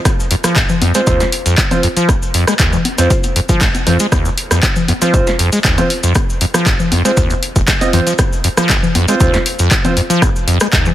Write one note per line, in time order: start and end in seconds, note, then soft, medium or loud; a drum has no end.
0.05 kick loud
0.05 cross-stick medium
0.05 closed hi-hat medium
0.05 high conga medium
0.05 cabasa medium
0.20 cabasa soft
0.31 0.35 F2 medium
0.31 open hi-hat loud
0.44 0.58 F3 loud
0.44 cross-stick medium
0.44 closed hi-hat medium
0.44 high conga soft
0.44 cabasa medium
0.56 0.63 F1 loud
0.56 kick loud
0.56 clap loud
0.56 closed hi-hat medium
0.56 cabasa medium
0.69 low conga loud
0.69 cabasa soft
0.82 0.93 F2 medium
0.82 open hi-hat medium
0.82 high conga medium
0.95 1.02 G#3 medium
0.95 1.05 C4 medium
0.95 1.05 F4 medium
0.95 1.05 C5 medium
0.95 closed hi-hat medium
0.95 cabasa medium
1.07 1.22 D#2 medium
1.07 1.18 C4 medium
1.07 1.18 F4 medium
1.07 1.18 C5 medium
1.07 kick loud
1.07 closed hi-hat medium
1.07 cabasa medium
1.20 1.24 F2 loud
1.20 snare soft
1.20 closed hi-hat soft
1.20 high conga soft
1.20 cabasa soft
1.32 open hi-hat loud
1.46 1.56 F2 medium
1.46 closed hi-hat medium
1.46 cabasa medium
1.58 kick loud
1.58 clap loud
1.58 closed hi-hat medium
1.58 cabasa medium
1.71 1.77 C4 medium
1.71 1.77 F4 medium
1.71 1.77 C5 loud
1.71 closed hi-hat medium
1.71 high conga medium
1.71 low conga medium
1.71 cabasa soft
1.83 1.88 F2 medium
1.83 open hi-hat medium
1.97 2.10 F3 loud
1.97 closed hi-hat medium
1.97 cabasa medium
2.09 2.16 F1 loud
2.09 kick loud
2.09 cross-stick medium
2.09 closed hi-hat medium
2.09 high conga medium
2.09 cabasa medium
2.22 cabasa soft
2.34 2.45 F2 medium
2.34 open hi-hat loud
2.47 2.54 G#3 medium
2.47 cross-stick medium
2.47 closed hi-hat medium
2.47 high conga soft
2.47 cabasa medium
2.59 2.74 D#2 medium
2.59 kick loud
2.59 clap loud
2.59 closed hi-hat medium
2.59 cabasa medium
2.73 2.77 F2 loud
2.73 low conga loud
2.73 cabasa soft
2.85 open hi-hat loud
2.85 high conga medium
2.98 3.08 F2 medium
2.98 3.08 C4 medium
2.98 3.08 F4 medium
2.98 3.08 C5 medium
2.98 closed hi-hat medium
2.98 cabasa medium
3.10 kick loud
3.10 closed hi-hat medium
3.10 cabasa medium
3.23 closed hi-hat soft
3.23 high conga soft
3.23 cabasa soft
3.36 3.40 F2 medium
3.36 open hi-hat loud
3.49 3.63 F3 loud
3.49 kick medium
3.49 closed hi-hat medium
3.49 cabasa medium
3.61 3.69 F1 loud
3.61 kick loud
3.61 snare soft
3.61 clap loud
3.61 closed hi-hat medium
3.61 cabasa medium
3.75 closed hi-hat medium
3.75 high conga medium
3.75 cabasa soft
3.87 3.98 F2 medium
3.87 3.94 C4 medium
3.87 3.94 F4 medium
3.87 3.94 C5 medium
3.87 open hi-hat loud
3.87 low conga loud
4.00 4.07 G#3 medium
4.00 closed hi-hat medium
4.00 cabasa medium
4.12 4.27 D#2 medium
4.12 kick loud
4.12 cross-stick medium
4.12 closed hi-hat medium
4.12 high conga medium
4.12 cabasa medium
4.25 4.29 F2 loud
4.25 cabasa soft
4.38 open hi-hat loud
4.51 4.61 F2 medium
4.51 cross-stick medium
4.51 closed hi-hat medium
4.51 high conga soft
4.51 cabasa medium
4.63 kick loud
4.63 clap loud
4.63 closed hi-hat medium
4.63 cabasa medium
4.76 low conga loud
4.76 cabasa soft
4.88 4.93 F2 medium
4.88 open hi-hat medium
4.88 high conga medium
5.02 5.15 F3 loud
5.02 5.12 C4 medium
5.02 5.12 F4 medium
5.02 5.12 C5 medium
5.02 closed hi-hat medium
5.02 cabasa medium
5.14 5.21 F1 loud
5.14 5.25 C4 medium
5.14 5.25 F4 medium
5.14 5.25 C5 medium
5.14 kick loud
5.14 closed hi-hat medium
5.14 cabasa medium
5.27 snare soft
5.27 closed hi-hat soft
5.27 high conga soft
5.27 cabasa soft
5.39 5.50 F2 medium
5.39 open hi-hat loud
5.52 5.59 G#3 medium
5.52 closed hi-hat medium
5.52 cabasa medium
5.64 5.79 D#2 medium
5.64 kick loud
5.64 clap loud
5.64 closed hi-hat medium
5.64 cabasa medium
5.78 5.82 F2 loud
5.78 5.84 C4 medium
5.78 5.84 F4 medium
5.78 5.84 C5 medium
5.78 closed hi-hat medium
5.78 high conga medium
5.78 low conga loud
5.78 cabasa soft
5.90 open hi-hat loud
6.03 6.13 F2 medium
6.03 closed hi-hat medium
6.03 cabasa medium
6.15 kick loud
6.15 cross-stick medium
6.15 closed hi-hat medium
6.15 high conga medium
6.15 cabasa medium
6.30 cabasa soft
6.41 6.45 F2 medium
6.41 open hi-hat loud
6.54 6.68 F3 loud
6.54 cross-stick medium
6.54 closed hi-hat medium
6.54 high conga soft
6.54 cabasa medium
6.66 6.74 F1 loud
6.66 kick loud
6.66 clap loud
6.66 closed hi-hat medium
6.66 cabasa medium
6.80 low conga loud
6.80 cabasa soft
6.92 7.03 F2 medium
6.92 open hi-hat medium
6.92 high conga medium
7.05 7.12 G#3 medium
7.05 7.15 C4 medium
7.05 7.15 F4 medium
7.05 7.15 C5 medium
7.05 closed hi-hat medium
7.05 cabasa medium
7.17 7.32 D#2 medium
7.17 kick loud
7.17 closed hi-hat medium
7.17 cabasa medium
7.30 7.34 F2 loud
7.30 closed hi-hat soft
7.30 high conga soft
7.30 cabasa soft
7.43 open hi-hat loud
7.56 7.63 F1 loud
7.56 kick medium
7.56 closed hi-hat soft
7.56 cabasa medium
7.67 kick loud
7.67 snare soft
7.67 clap loud
7.67 closed hi-hat medium
7.67 cabasa medium
7.81 7.88 C4 loud
7.81 7.87 F4 medium
7.81 7.88 D#5 loud
7.81 closed hi-hat medium
7.81 high conga medium
7.81 cabasa soft
7.93 8.01 F2 loud
7.93 8.04 C4 medium
7.93 8.04 F4 medium
7.93 8.04 C5 medium
7.93 open hi-hat medium
7.93 low conga loud
8.07 8.13 F3 medium
8.07 closed hi-hat medium
8.07 cabasa medium
8.18 kick loud
8.18 cross-stick medium
8.18 closed hi-hat medium
8.18 high conga medium
8.18 cabasa medium
8.33 cabasa soft
8.44 8.49 F2 medium
8.44 open hi-hat loud
8.57 8.71 F3 loud
8.57 cross-stick medium
8.57 closed hi-hat soft
8.57 high conga soft
8.57 cabasa medium
8.69 8.77 F1 loud
8.69 kick loud
8.69 clap loud
8.69 closed hi-hat medium
8.69 cabasa medium
8.83 low conga loud
8.83 cabasa soft
8.95 9.06 F2 medium
8.95 open hi-hat medium
8.95 high conga medium
9.08 9.15 G#3 medium
9.08 9.18 C4 medium
9.08 9.18 F4 medium
9.08 9.18 C5 medium
9.08 closed hi-hat medium
9.08 cabasa medium
9.20 9.35 D#2 medium
9.20 9.32 C4 medium
9.20 9.32 F4 medium
9.20 9.32 C5 medium
9.20 kick loud
9.20 closed hi-hat medium
9.20 cabasa medium
9.33 9.38 F2 loud
9.33 snare soft
9.33 closed hi-hat soft
9.33 high conga soft
9.33 cabasa soft
9.46 open hi-hat loud
9.59 9.69 F2 medium
9.59 closed hi-hat soft
9.59 cabasa medium
9.71 kick loud
9.71 clap loud
9.71 closed hi-hat medium
9.71 cabasa medium
9.85 9.91 C4 medium
9.85 9.91 F4 medium
9.85 9.91 C5 medium
9.85 closed hi-hat medium
9.85 high conga medium
9.85 low conga medium
9.85 cabasa soft
9.97 10.01 F2 medium
9.97 open hi-hat medium
10.10 10.23 F3 loud
10.10 closed hi-hat medium
10.10 cabasa medium
10.22 10.29 F1 loud
10.22 kick loud
10.22 cross-stick medium
10.22 closed hi-hat medium
10.22 high conga medium
10.22 cabasa medium
10.36 cabasa soft
10.47 10.58 F2 medium
10.47 open hi-hat loud
10.60 10.67 G#3 medium
10.60 cross-stick medium
10.60 closed hi-hat medium
10.60 high conga soft
10.60 cabasa medium
10.73 10.88 D#2 medium
10.73 kick loud
10.73 clap loud
10.73 closed hi-hat medium
10.73 cabasa medium
10.86 10.90 F2 loud
10.86 low conga medium
10.86 cabasa soft